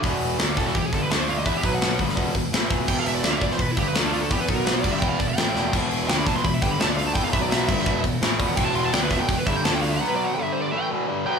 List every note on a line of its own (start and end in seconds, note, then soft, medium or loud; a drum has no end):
0.03 0.37 E1 loud
0.03 0.39 E2 loud
0.03 0.38 B2 loud
0.03 0.39 E3 loud
0.03 kick loud
0.03 open hi-hat medium
0.21 open hi-hat medium
0.38 0.56 D2 loud
0.38 0.56 D3 medium
0.38 0.57 A3 medium
0.38 0.57 D4 loud
0.38 snare loud
0.38 open hi-hat medium
0.56 0.74 E1 medium
0.56 0.74 E2 medium
0.56 0.74 B2 loud
0.56 0.75 E3 loud
0.56 0.66 A4 medium
0.56 kick loud
0.56 snare soft
0.56 open hi-hat medium
0.66 0.75 F#4 medium
0.66 snare soft
0.75 0.92 E1 medium
0.75 0.89 E2 medium
0.75 0.90 B2 medium
0.75 0.84 G4 medium
0.75 kick loud
0.75 open hi-hat medium
0.86 0.93 G#4 medium
0.92 1.09 G1 medium
0.92 1.10 G2 medium
0.92 1.09 D3 loud
0.92 1.11 G3 loud
0.92 1.02 A4 loud
0.92 kick loud
0.92 open hi-hat medium
1.02 1.11 B4 medium
1.10 1.44 D2 medium
1.10 1.45 D3 medium
1.10 1.46 A3 medium
1.10 1.46 D4 loud
1.10 1.20 A4 medium
1.10 snare loud
1.10 open hi-hat medium
1.20 1.28 C5 medium
1.28 1.37 F5 loud
1.28 open hi-hat medium
1.38 1.47 D#5 loud
1.46 1.63 E2 loud
1.46 1.63 E3 medium
1.46 1.63 B3 loud
1.46 1.64 E4 loud
1.46 1.55 E5 loud
1.46 kick loud
1.46 open hi-hat medium
1.57 1.65 G4 medium
1.63 1.97 B1 loud
1.63 1.99 B2 medium
1.63 1.99 F#3 medium
1.63 1.99 B3 loud
1.63 1.73 B4 medium
1.63 kick loud
1.63 open hi-hat medium
1.75 1.99 F#5 medium
1.81 snare loud
1.81 open hi-hat medium
1.99 2.16 G1 medium
1.99 2.15 G2 medium
1.99 2.16 D3 loud
1.99 2.17 G3 loud
1.99 kick loud
1.99 open hi-hat medium
2.09 snare soft
2.16 2.34 E1 loud
2.16 2.34 E2 loud
2.16 2.34 B2 medium
2.16 2.34 E3 medium
2.16 kick loud
2.16 open hi-hat medium
2.35 2.52 E1 medium
2.35 2.50 E2 medium
2.35 2.50 B2 medium
2.35 kick medium
2.35 open hi-hat medium
2.52 2.69 A1 medium
2.52 2.70 A2 loud
2.52 2.71 E3 medium
2.52 2.71 A3 loud
2.52 snare loud
2.52 open hi-hat medium
2.71 2.87 E1 medium
2.71 2.87 E2 loud
2.71 2.87 B2 loud
2.71 2.88 E3 loud
2.71 kick loud
2.71 open hi-hat medium
2.88 3.21 E1 loud
2.88 3.23 E2 loud
2.88 3.23 B2 loud
2.88 3.23 E3 loud
2.88 2.97 G5 medium
2.88 kick loud
2.88 crash loud
2.99 3.07 F5 medium
3.06 3.15 E5 loud
3.06 open hi-hat medium
3.15 3.24 D5 loud
3.23 3.41 D2 loud
3.23 3.41 D3 medium
3.23 3.41 A3 loud
3.23 3.42 D4 loud
3.23 3.32 E5 medium
3.23 snare loud
3.23 open hi-hat medium
3.32 3.37 F5 loud
3.38 3.58 E1 loud
3.38 3.57 E2 loud
3.38 3.58 B2 loud
3.38 3.43 E5 medium
3.38 kick loud
3.38 open hi-hat medium
3.42 3.59 E3 loud
3.42 3.51 D5 loud
3.51 3.62 C5 medium
3.51 snare soft
3.58 3.76 E1 medium
3.58 3.73 E2 medium
3.58 3.74 B2 medium
3.58 kick medium
3.58 open hi-hat medium
3.62 3.70 B4 medium
3.71 3.79 E4 medium
3.77 3.94 G1 medium
3.77 3.94 G2 loud
3.77 3.93 D3 loud
3.77 3.95 G3 loud
3.77 3.87 G4 medium
3.77 kick loud
3.77 open hi-hat medium
3.88 3.96 B4 loud
3.94 4.28 D2 medium
3.94 4.30 D3 medium
3.94 4.30 A3 medium
3.94 4.30 D4 medium
3.94 4.04 A4 medium
3.94 snare loud
3.94 open hi-hat medium
4.04 4.13 D4 medium
4.13 4.22 F4 medium
4.13 open hi-hat medium
4.21 4.30 A4 loud
4.31 4.47 E2 medium
4.31 4.48 E3 loud
4.31 4.48 B3 loud
4.31 4.49 E4 loud
4.31 4.40 G4 medium
4.31 kick loud
4.31 open hi-hat medium
4.40 4.49 B4 loud
4.48 4.82 B1 loud
4.48 4.84 B2 loud
4.48 4.84 F#3 medium
4.48 4.84 B3 loud
4.48 4.56 A4 medium
4.48 kick loud
4.48 open hi-hat medium
4.56 4.65 A#4 medium
4.66 4.75 B4 medium
4.66 snare loud
4.66 open hi-hat medium
4.73 4.82 C5 medium
4.82 5.01 G1 medium
4.82 5.02 G2 loud
4.82 5.02 D3 loud
4.82 5.02 G3 loud
4.82 4.92 D5 medium
4.82 kick loud
4.82 crash medium
4.92 4.99 E5 medium
5.00 5.19 E1 loud
5.00 5.19 E2 medium
5.00 5.19 B2 loud
5.00 5.20 E3 loud
5.00 5.09 G5 medium
5.00 kick loud
5.09 5.19 F5 medium
5.19 5.36 E1 medium
5.19 5.34 E2 medium
5.19 5.34 B2 medium
5.19 5.28 D5 loud
5.19 kick medium
5.19 open hi-hat medium
5.27 5.37 E5 medium
5.37 5.54 A1 medium
5.37 5.55 A2 medium
5.37 5.55 E3 medium
5.37 5.55 A3 medium
5.37 5.73 G5 loud
5.37 snare loud
5.37 open hi-hat medium
5.55 5.72 E1 medium
5.55 5.72 E2 loud
5.55 5.73 B2 loud
5.55 5.73 E3 loud
5.55 snare medium
5.73 6.06 E1 loud
5.73 6.08 E2 loud
5.73 6.08 B2 loud
5.73 6.09 E3 loud
5.73 kick loud
5.73 crash loud
5.91 open hi-hat medium
6.08 6.25 D2 loud
6.08 6.26 D3 medium
6.08 6.26 A3 medium
6.08 6.27 D4 loud
6.08 6.17 G5 medium
6.08 snare loud
6.08 open hi-hat medium
6.18 6.26 B5 medium
6.26 6.43 E1 medium
6.26 6.44 E2 medium
6.26 6.44 B2 medium
6.26 6.44 E3 medium
6.26 6.36 A5 loud
6.26 kick loud
6.26 snare soft
6.26 open hi-hat medium
6.36 6.45 C6 loud
6.36 snare soft
6.44 6.61 E1 medium
6.44 6.59 E2 medium
6.44 6.59 B2 medium
6.44 6.53 B5 medium
6.44 kick medium
6.44 open hi-hat medium
6.54 6.62 E5 medium
6.62 6.79 G1 loud
6.62 6.79 G2 medium
6.62 6.77 D3 loud
6.62 6.79 G3 loud
6.62 6.71 G5 loud
6.62 kick loud
6.62 open hi-hat medium
6.71 6.80 B5 loud
6.79 7.13 D2 medium
6.79 7.14 D3 loud
6.79 7.14 A3 loud
6.79 7.15 D4 medium
6.79 6.89 A5 loud
6.79 snare loud
6.79 open hi-hat medium
6.90 6.97 D5 medium
6.97 7.06 F5 medium
6.97 open hi-hat medium
7.07 7.14 A5 loud
7.14 7.32 E2 medium
7.14 7.32 E3 loud
7.14 7.33 B3 loud
7.14 7.33 E4 loud
7.14 7.24 G5 medium
7.14 kick loud
7.14 open hi-hat medium
7.24 7.33 F5 medium
7.32 7.66 B1 loud
7.32 7.68 B2 medium
7.32 7.68 F#3 medium
7.32 7.68 B3 loud
7.32 7.42 E5 medium
7.32 kick loud
7.32 open hi-hat medium
7.42 7.51 D5 medium
7.51 8.01 E5 medium
7.51 snare loud
7.51 open hi-hat medium
7.67 7.85 G1 medium
7.67 7.85 G2 loud
7.67 7.85 D3 loud
7.67 7.86 G3 loud
7.67 kick loud
7.67 crash medium
7.79 snare soft
7.85 8.03 E1 loud
7.85 8.03 E2 medium
7.85 8.03 B2 loud
7.85 8.04 E3 loud
7.85 kick loud
8.04 8.21 E1 medium
8.04 8.19 E2 medium
8.04 8.19 B2 medium
8.04 kick medium
8.04 open hi-hat medium
8.22 8.39 A1 loud
8.22 8.39 A2 loud
8.22 8.39 E3 loud
8.22 8.40 A3 medium
8.22 snare loud
8.22 open hi-hat medium
8.39 8.56 E1 loud
8.39 8.56 E2 loud
8.39 8.57 B2 loud
8.39 8.57 E3 loud
8.39 kick loud
8.39 open hi-hat medium
8.47 8.56 F#5 loud
8.57 8.91 E1 loud
8.57 8.93 E2 loud
8.57 8.93 B2 loud
8.57 8.93 E3 loud
8.57 8.65 G5 medium
8.57 kick loud
8.57 crash medium
8.65 8.75 A5 loud
8.75 8.84 C6 loud
8.75 open hi-hat medium
8.84 8.93 A5 loud
8.93 9.10 D2 loud
8.93 9.10 D3 medium
8.93 9.11 A3 loud
8.93 9.11 D4 loud
8.93 9.02 G5 loud
8.93 snare loud
8.93 open hi-hat medium
9.02 9.11 B4 medium
9.10 9.27 E1 loud
9.10 9.28 E2 loud
9.10 9.28 B2 loud
9.10 9.29 E3 loud
9.10 9.20 E5 loud
9.10 kick loud
9.10 snare soft
9.10 open hi-hat medium
9.19 9.28 G5 medium
9.28 9.45 E1 medium
9.28 9.43 E2 medium
9.28 9.43 B2 medium
9.28 9.38 G5 medium
9.28 kick loud
9.28 open hi-hat medium
9.37 9.46 B4 medium
9.46 9.63 G1 loud
9.46 9.64 G2 loud
9.46 9.64 D3 loud
9.46 9.65 G3 loud
9.46 9.56 E5 loud
9.46 kick loud
9.46 open hi-hat medium
9.56 9.64 G5 medium
9.64 9.97 D2 medium
9.64 10.00 D3 medium
9.64 10.00 A3 loud
9.64 10.01 D4 loud
9.64 9.73 A5 loud
9.64 snare loud
9.64 open hi-hat medium
9.73 9.81 G5 medium
9.82 9.91 F5 loud
9.82 open hi-hat medium
9.91 9.99 E5 loud
9.99 10.37 B2 loud
9.99 10.37 F#3 loud
9.99 10.36 B3 loud
9.99 10.08 F#5 loud
10.08 10.16 B4 medium
10.16 10.26 D5 loud
10.24 10.34 F#5 medium
10.34 10.71 G2 loud
10.34 10.71 D3 medium
10.34 10.71 G3 loud
10.34 10.42 G5 loud
10.42 10.52 E5 medium
10.52 10.61 C5 loud
10.62 10.71 D5 medium
10.71 10.89 A2 medium
10.71 10.89 E3 loud
10.71 10.90 A3 loud
10.71 10.81 E5 medium
10.81 10.86 G5 loud
10.90 11.07 E2 medium
10.90 11.07 B2 loud
10.90 11.07 E3 loud
11.07 11.24 G2 medium
11.07 11.24 D3 medium
11.07 11.25 G3 medium
11.26 11.39 B2 medium
11.26 11.39 F#3 loud
11.26 11.39 B3 loud
11.26 11.39 G5 loud